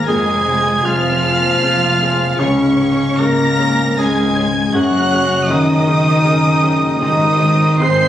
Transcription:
Already playing: harp G#2 D#3 G#3 C4 G#4, grand piano D#3 G#3 C4
0.06 double bass section F1, harp F2, grand piano F2, french horn section G#3, cello section G#3, viola section C4 G#4, clarinet G#4, oboe G#4, violin section G#5 G#6
0.34 grand piano C3
0.46 harp C3, viola section C4 G#4
0.60 grand piano C4
0.83 double bass section F1, grand piano C3, french horn section F3, cello section F3, harp G#3, viola section C4 G#4, clarinet F4, oboe F4, violin section F5 F6
1.11 grand piano C4
1.23 viola section C4 G#4, harp G#4
1.38 grand piano A#3
1.61 double bass section F1, harp C4, viola section C4 G#4, grand piano C4
1.86 grand piano C3
2.00 viola section C4 G#4, harp G#4
2.14 grand piano G#3
2.38 double bass section C#2, grand piano C#2, cello section C#3, harp C#3, french horn section C#3, clarinet C#4, viola section C#4 G#4, oboe C#4, violin section C#5 C#6
2.66 grand piano G#2
2.79 harp G#3, viola section C#4 G#4
2.92 grand piano C#4
3.18 double bass section C#2, grand piano G#2, cello section A#3, french horn section A#3, viola section C#4 G#4, harp C#4, oboe A#4, clarinet A#4, violin section A#5 A#6
3.46 grand piano C#4
3.58 viola section C#4 G#4, harp G#4
3.72 grand piano C4
3.97 double bass section C#2, cello section G#3, french horn section G#3, grand piano C#4, viola section C#4 G#4, clarinet G#4, oboe G#4, harp C#5, violin section G#5 G#6
4.23 grand piano G#2
4.36 viola section C#4 G#4, harp G#4
4.48 grand piano G#3
4.73 double bass section F#1, grand piano F#2, harp F#2, cello section F#3, french horn section F#3, viola section C#4 G#4, clarinet F#4, oboe F#4, violin section F#5 F#6
5.00 grand piano C#3
5.11 harp C#3, viola section C#4 G#4
5.23 grand piano C#4
5.47 double bass section F#1, grand piano C#3, french horn section D#3, cello section D#3, harp G#3, viola section C#4 G#4, clarinet D#4, violin section D#5 D#6
5.51 oboe D#4
5.74 grand piano C#4
5.86 viola section C#4 G#4, harp F#4
6.00 grand piano C4
6.24 double bass section F#1, viola section C#4 G#4, grand piano C#4, harp G#4
6.50 grand piano C#3
6.62 viola section C#4 G#4, harp F#4
6.76 grand piano G#3
6.99 double bass section G#1, harp G#2, timpani G#2, grand piano G#2, cello section D#3, french horn section D#3, viola section C4 G#4, oboe D#4, clarinet D#4, violin section D#5 D#6
7.28 grand piano D#3
7.39 harp D#3, viola section C4 G#4
7.55 grand piano C4
7.80 double bass section G#1, grand piano D#3, harp G#3, viola section C4 G#4, french horn section C4, cello section C4, clarinet C5, oboe C5, violin section C6 C7

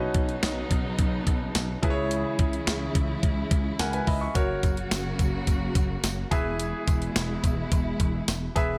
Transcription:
Already playing: grand piano B2 C#4 D#4 F#4 B4 D#5, string section C#3 F#3 B3 D#4
0.14 slap bass B1, kick, closed hi-hat
0.29 closed hi-hat
0.43 slap bass B1, snare, closed hi-hat, tambourine
0.71 slap bass B1, kick, closed hi-hat
0.99 slap bass B1, kick, closed hi-hat
1.27 slap bass B1, kick, closed hi-hat
1.55 slap bass B1, snare, closed hi-hat, tambourine
1.83 slap bass C#2, string section C#3 E3 G#3 E4, grand piano C#3 E4 G#4 B4, kick, closed hi-hat
1.90 grand piano C#5
2.11 closed hi-hat
2.39 slap bass C#2, kick, closed hi-hat
2.53 closed hi-hat
2.67 slap bass C#2, snare, closed hi-hat, tambourine
2.95 slap bass C#2, kick, closed hi-hat
3.23 slap bass C#2, kick, closed hi-hat
3.51 slap bass C#2, kick, closed hi-hat
3.79 slap bass C#2, grand piano A#4 F#5 G#5, snare, closed hi-hat, tambourine
3.93 grand piano B4 G#5, closed hi-hat
4.07 slap bass C#2, grand piano D#5 E5 B5, kick, open hi-hat
4.21 grand piano E5 C#6
4.35 slap bass F#1, string section C#3 F#3 A#3 F#4, grand piano F#4 A#4 C#5, kick, closed hi-hat, tambourine
4.63 slap bass F#1, kick, closed hi-hat, tambourine
4.77 closed hi-hat
4.91 slap bass F#1, snare, closed hi-hat, tambourine
5.19 slap bass F#1, kick, closed hi-hat, tambourine
5.47 slap bass F#1, kick, closed hi-hat, tambourine
5.75 slap bass F#1, kick, closed hi-hat, tambourine
6.03 slap bass F#1, snare, closed hi-hat, tambourine
6.31 slap bass E1, string section B2 E3 G#3 E4, grand piano E3 G#4 B4 E5, kick, closed hi-hat, tambourine
6.60 closed hi-hat, tambourine
6.87 slap bass E1, kick, closed hi-hat, tambourine
7.02 closed hi-hat
7.16 slap bass E1, snare, closed hi-hat, tambourine
7.44 slap bass E1, kick, closed hi-hat, tambourine
7.72 slap bass E1, kick, closed hi-hat, tambourine
8.00 slap bass E1, kick, closed hi-hat
8.28 slap bass E1, snare, closed hi-hat, tambourine
8.56 slap bass E1, grand piano G#4 B4 E5, kick, closed hi-hat, tambourine

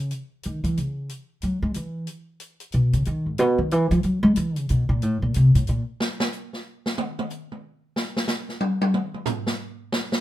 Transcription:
0.11 closed hi-hat
0.43 upright bass D#3, closed hi-hat
0.64 upright bass E3, closed hi-hat
0.77 upright bass C#3, closed hi-hat
1.09 closed hi-hat
1.42 upright bass F#3, closed hi-hat
1.62 upright bass G#3
1.74 upright bass E3, closed hi-hat
2.07 closed hi-hat
2.40 closed hi-hat
2.60 closed hi-hat
2.72 upright bass B2, closed hi-hat
2.93 upright bass C#3, closed hi-hat
3.05 upright bass D#3, closed hi-hat
3.26 upright bass G#2
3.38 upright bass B2, closed hi-hat
3.58 upright bass D#3
3.71 upright bass E3, closed hi-hat
3.91 upright bass F3, closed hi-hat
4.03 upright bass F#3, closed hi-hat
4.23 upright bass G#3
4.36 upright bass E3, closed hi-hat
4.56 upright bass C#3, closed hi-hat
4.69 upright bass B2, closed hi-hat
4.89 upright bass A#2
5.02 upright bass A2, closed hi-hat
5.22 upright bass A#2
5.34 upright bass C3, closed hi-hat
5.55 upright bass A2, closed hi-hat
5.67 upright bass A#2, closed hi-hat
6.00 snare
6.20 snare
6.32 hi-hat pedal
6.53 snare
6.86 snare
6.98 mid tom
7.19 mid tom
7.30 hi-hat pedal
7.52 mid tom
7.96 snare
8.17 snare
8.28 snare, hi-hat pedal
8.49 snare
8.61 high tom
8.81 high tom
8.94 mid tom
9.14 mid tom
9.26 floor tom, hi-hat pedal
9.47 snare
9.92 snare
10.12 snare

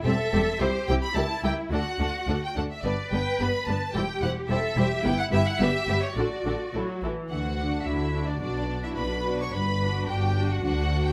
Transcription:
0.04 double bass section E1, viola section G3 C4, violin section G4 C5 E5, cello section A4
0.33 double bass section E1, viola section G3 C4, violin section G4 C5
0.60 double bass section C2, viola section G3 E4, violin section G4 C5, cello section G4
0.88 double bass section C2, viola section G3 E4, violin section G4 C5 G5
1.03 violin section B5
1.15 double bass section C#2, viola section G3 E4, cello section E4, violin section G4 A#4 A5
1.44 double bass section C#2, viola section G3 E4, violin section G4 A#4 G5
1.71 double bass section D2, viola section A3 D4, violin section D4 A4 F#5, cello section F#4
1.99 double bass section D2, viola section A3 D4, violin section D4 A4
2.27 double bass section D2, viola section A3 D4, violin section D4 A4
2.44 violin section G5
2.55 double bass section D2, viola section A3 D4, violin section D4 A4 F#5
2.71 violin section E5
2.84 double bass section G1, viola section G3 B3, violin section D4 B4 D5, cello section B4
3.12 double bass section G1, viola section G3 B3, violin section D4 B4 G5
3.40 double bass section G1, viola section G3 B3, violin section D4 B4 B5
3.67 double bass section G1, viola section G3 B3, violin section D4 B4 A5
3.94 double bass section E1, viola section G3 E4, violin section G4 C5 G5, cello section G4
4.22 double bass section E1, viola section G3 E4, violin section G4 C5 F#5
4.49 double bass section E1, viola section G3 E4, violin section G4 C5 E5, cello section A4
4.76 double bass section E1, viola section G3 E4, cello section G4, violin section G4 C5
5.03 double bass section G1, viola section G3 B3, cello section E4, violin section G4 B4 G5
5.19 violin section F#5
5.32 double bass section G1, viola section G3 B3, violin section G4 B4 E5
5.48 violin section F#5
5.60 double bass section G1, viola section G3 B3, cello section G4, violin section G4 B4 E5
5.88 double bass section G1, viola section G3 B3, violin section G4 B4
6.04 violin section C#5
6.16 double bass section A1, viola section D3 D4, cello section F#4, violin section F#4 A4 D5
6.45 double bass section A1, viola section D3 D4, violin section F#4 A4
6.73 double bass section A1, viola section F#3, violin section E4 A4
7.02 double bass section A1, viola section E3, violin section E4 A4
7.30 double bass section D2, cello section D3, violin section F#4 F#5
7.58 viola section D4 F#4
7.85 double bass section D2, cello section D3, violin section E4 E5
8.13 viola section D4 F#4
8.28 violin section D4 D5
8.40 double bass section B1, cello section B2, viola section D4 F#4, violin section D4 D5
8.68 viola section D4 F#4
8.84 violin section E4 E5
8.96 double bass section B1, cello section B2, violin section B4 B5
9.25 viola section D4 F#4
9.41 violin section C#5 C#6
9.53 double bass section G1, cello section G2, violin section B4 B5
9.81 viola section D4 F#4
10.08 double bass section G1, cello section G2, violin section G4 G5
10.36 viola section D4 F#4
10.51 violin section F#4 F#5
10.63 double bass section D2, cello section D3, viola section D4 F#4, violin section F#4 F#5
10.91 viola section D4 F#4
11.07 violin section G4 G5

